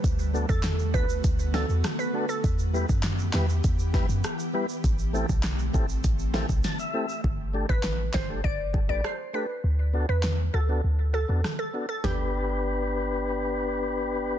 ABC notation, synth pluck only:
X:1
M:4/4
L:1/16
Q:1/4=100
K:G
V:1 name="Synth pluck"
z3 A2 z B2 z2 A z2 B z A | z16 | z16 | z3 B2 z c2 d z2 d c z B z |
z3 B2 z A2 z2 A z2 A z A | G12 z4 |]